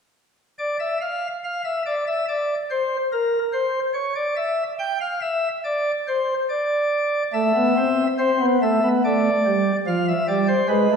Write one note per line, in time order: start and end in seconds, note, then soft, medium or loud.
0.58 0.77 D5 medium
0.80 0.98 E5 medium
1.01 1.27 F5 medium
1.44 1.62 F5 medium
1.64 1.83 E5 medium
1.86 2.04 D5 medium
2.07 2.25 E5 medium
2.28 2.54 D5 medium
2.71 2.97 C5 medium
3.12 3.38 A#4 medium
3.53 3.80 C5 medium
3.94 4.13 C#5 medium
4.15 4.35 D5 medium
4.36 4.63 E5 medium
4.79 4.98 G5 medium
5.00 5.19 F5 medium
5.22 5.48 E5 medium
5.64 5.91 D5 medium
6.08 6.34 C5 medium
6.49 7.23 D5 medium
7.33 7.52 A3 medium
7.33 8.07 E5 medium
7.55 7.74 B3 medium
7.77 8.03 C4 medium
8.19 8.38 C4 medium
8.19 8.45 C5 medium
8.40 8.58 B3 medium
8.62 8.80 A3 medium
8.62 8.88 E5 medium
8.84 9.01 B3 medium
9.04 9.30 A3 medium
9.04 9.76 D5 medium
9.46 9.71 G3 medium
9.87 10.13 F3 medium
9.87 10.05 F5 medium
10.08 10.26 E5 medium
10.28 10.54 G3 medium
10.28 10.46 D5 medium
10.48 10.67 C5 medium
10.68 10.87 G#3 medium
10.68 10.95 B4 medium
10.92 10.96 A3 medium